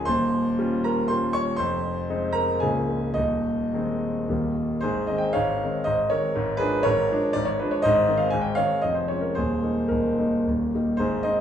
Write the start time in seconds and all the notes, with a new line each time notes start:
0.05 D#1 D#2 C5 C6
0.59 G3 C#4 F4
0.84 A#4 A#5
1.08 G3 C#4 F4 C5 C6
1.33 C#5 C#6
1.56 F1 F2 C5 C6
2.10 G#3 C4 D#4
2.33 A#4 A#5
2.60 C#1 C#2 F3 A#3 C#4 G#4 G#5
3.14 D#1 D#2 D#4 D#5
3.74 D#3 G#3 C4
4.28 D#1 D#2 D#3 G3 A#3
4.81 G#1 G#2 G#4 C5
5.07 D#3 G#3 C4 D#5
5.18 G5
5.33 G#1 G#2 C#5 F5
5.63 D#3 G#3 C4
5.84 G#1 G#2 C5 D#5
6.10 D#3 G#3 C4 A#4 C#5
6.35 G#1 G#2
6.57 F3 G#3 D4 G#4 B4
6.83 G#1 G#2 A#4 C#5
7.11 F3 G#3 D4
7.33 G#1 G#2 D5
7.45 C#5
7.59 F3 G#3 D4 B4
7.71 C#5
7.82 G#1 G#2 C5 D#5
8.08 D#3 G#3 C4
8.17 F5
8.30 G#1 G#2 G#5
8.41 G5
8.55 D#3 G#3 C4 C#5 F5
8.82 F1 F2 D#5
8.94 C5
9.08 F3 G#3 C#4 C#5
9.21 A#4
9.35 D#1 D#2 G#4 C5
9.63 G#3 A#3 D#4
9.88 D#1 D#2 D#4 A#4
10.19 G#3 A#3 D#4
10.47 D#1 D#2
10.75 G3 A#3 D#4
10.97 G#1 G#2 G#4 C5
11.23 G#3 C4 D#4 C5 D#5